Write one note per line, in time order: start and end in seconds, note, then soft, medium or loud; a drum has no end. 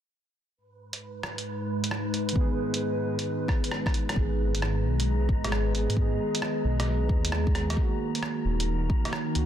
0.56 4.13 G#2 medium
0.56 4.13 G#3 medium
0.56 4.13 D#4 medium
0.56 4.13 B4 medium
0.56 4.19 B4 medium
0.93 closed hi-hat medium
1.23 cross-stick loud
1.38 closed hi-hat medium
1.84 closed hi-hat medium
1.91 cross-stick medium
2.14 closed hi-hat soft
2.29 4.11 D#3 medium
2.29 closed hi-hat medium
2.36 4.14 B3 medium
2.36 kick loud
2.40 4.16 G#4 medium
2.74 closed hi-hat medium
3.19 closed hi-hat medium
3.48 kick medium
3.48 cross-stick medium
3.64 closed hi-hat medium
3.71 cross-stick medium
3.86 kick loud
3.86 cross-stick medium
3.94 closed hi-hat soft
4.09 5.70 D#3 medium
4.09 cross-stick medium
4.09 closed hi-hat medium
4.16 4.86 G#1 loud
4.16 7.74 G#3 medium
4.16 5.72 B3 medium
4.16 7.74 G#4 medium
4.16 7.74 B4 medium
4.16 7.74 D#5 medium
4.16 9.46 A#5 medium
4.16 kick loud
4.20 5.74 G#4 medium
4.55 closed hi-hat medium
4.62 cross-stick loud
4.84 5.30 B1 medium
5.00 closed hi-hat medium
5.29 5.87 G#1 medium
5.29 kick loud
5.44 cross-stick medium
5.44 closed hi-hat medium
5.52 cross-stick medium
5.73 5.92 D#3 medium
5.73 5.96 B3 medium
5.73 closed hi-hat soft
5.77 5.97 G#4 medium
5.89 6.18 G#2 loud
5.89 closed hi-hat medium
5.93 7.51 D#3 medium
5.93 kick loud
5.98 7.53 B3 medium
5.98 7.55 G#4 medium
6.35 closed hi-hat medium
6.42 cross-stick loud
6.64 7.11 B1 loud
6.80 cross-stick medium
6.80 closed hi-hat medium
7.09 7.76 D#2 medium
7.09 kick loud
7.25 closed hi-hat medium
7.32 cross-stick loud
7.47 kick loud
7.53 7.73 D#3 medium
7.53 7.76 B3 medium
7.53 cross-stick medium
7.53 closed hi-hat soft
7.57 7.77 G#4 medium
7.70 9.32 D#3 medium
7.70 cross-stick medium
7.70 closed hi-hat medium
7.77 9.46 D#3 medium
7.77 9.34 A#3 medium
7.77 9.46 D#4 medium
7.77 9.46 A#4 medium
7.77 9.46 F#5 medium
7.77 kick loud
7.82 9.36 F#4 medium
8.15 closed hi-hat medium
8.23 cross-stick loud
8.45 8.89 D#1 loud
8.60 closed hi-hat medium
8.90 kick loud
9.05 cross-stick medium
9.05 closed hi-hat medium
9.13 cross-stick loud
9.34 9.46 C#2 loud
9.34 9.46 D#3 medium
9.34 9.46 A#3 medium
9.34 closed hi-hat soft
9.38 9.46 F#4 medium